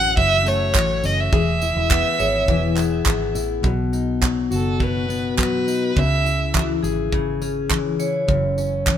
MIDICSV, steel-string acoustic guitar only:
0, 0, Header, 1, 2, 480
1, 0, Start_track
1, 0, Tempo, 579710
1, 1100, Time_signature, 4, 2, 24, 8
1, 7433, End_track
2, 0, Start_track
2, 0, Title_t, "Steel-string acoustic guitar"
2, 0, Program_c, 0, 25
2, 0, Note_on_c, 0, 42, 92
2, 0, Note_on_c, 0, 52, 76
2, 0, Note_on_c, 0, 61, 61
2, 0, Note_on_c, 0, 66, 68
2, 135, Note_off_c, 0, 42, 0
2, 145, Note_on_c, 0, 42, 84
2, 377, Note_on_c, 0, 57, 67
2, 619, Note_off_c, 0, 52, 0
2, 622, Note_on_c, 0, 52, 69
2, 853, Note_off_c, 0, 61, 0
2, 863, Note_on_c, 0, 61, 58
2, 1093, Note_off_c, 0, 52, 0
2, 1097, Note_on_c, 0, 52, 87
2, 1098, Note_off_c, 0, 66, 0
2, 1101, Note_on_c, 0, 68, 74
2, 1146, Note_off_c, 0, 57, 0
2, 1149, Note_off_c, 0, 42, 0
2, 1149, Note_off_c, 0, 61, 0
2, 1345, Note_on_c, 0, 64, 56
2, 1583, Note_on_c, 0, 59, 75
2, 1808, Note_off_c, 0, 68, 0
2, 1818, Note_on_c, 0, 68, 65
2, 2057, Note_off_c, 0, 52, 0
2, 2066, Note_on_c, 0, 52, 81
2, 2298, Note_off_c, 0, 59, 0
2, 2301, Note_on_c, 0, 59, 65
2, 2534, Note_off_c, 0, 59, 0
2, 2537, Note_on_c, 0, 59, 70
2, 2762, Note_off_c, 0, 64, 0
2, 2771, Note_on_c, 0, 64, 59
2, 3006, Note_on_c, 0, 47, 83
2, 3063, Note_off_c, 0, 64, 0
2, 3066, Note_off_c, 0, 68, 0
2, 3070, Note_off_c, 0, 52, 0
2, 3251, Note_on_c, 0, 63, 54
2, 3488, Note_on_c, 0, 54, 64
2, 3731, Note_on_c, 0, 66, 60
2, 3962, Note_off_c, 0, 47, 0
2, 3972, Note_on_c, 0, 47, 78
2, 4207, Note_off_c, 0, 59, 0
2, 4211, Note_on_c, 0, 59, 60
2, 4437, Note_off_c, 0, 54, 0
2, 4447, Note_on_c, 0, 54, 62
2, 4685, Note_off_c, 0, 63, 0
2, 4695, Note_on_c, 0, 63, 57
2, 4930, Note_off_c, 0, 47, 0
2, 4933, Note_on_c, 0, 49, 77
2, 4982, Note_off_c, 0, 54, 0
2, 4984, Note_off_c, 0, 59, 0
2, 4984, Note_off_c, 0, 66, 0
2, 4985, Note_off_c, 0, 63, 0
2, 5169, Note_on_c, 0, 64, 58
2, 5414, Note_on_c, 0, 52, 70
2, 5658, Note_on_c, 0, 68, 63
2, 5890, Note_off_c, 0, 49, 0
2, 5900, Note_on_c, 0, 49, 83
2, 6139, Note_on_c, 0, 61, 61
2, 6381, Note_off_c, 0, 52, 0
2, 6385, Note_on_c, 0, 52, 67
2, 6616, Note_off_c, 0, 64, 0
2, 6619, Note_on_c, 0, 64, 59
2, 6855, Note_on_c, 0, 42, 79
2, 6910, Note_off_c, 0, 68, 0
2, 6911, Note_off_c, 0, 49, 0
2, 7099, Note_off_c, 0, 64, 0
2, 7102, Note_off_c, 0, 61, 0
2, 7102, Note_on_c, 0, 61, 55
2, 7343, Note_off_c, 0, 52, 0
2, 7347, Note_on_c, 0, 52, 69
2, 7433, Note_off_c, 0, 42, 0
2, 7433, Note_off_c, 0, 52, 0
2, 7433, Note_off_c, 0, 61, 0
2, 7433, End_track
0, 0, End_of_file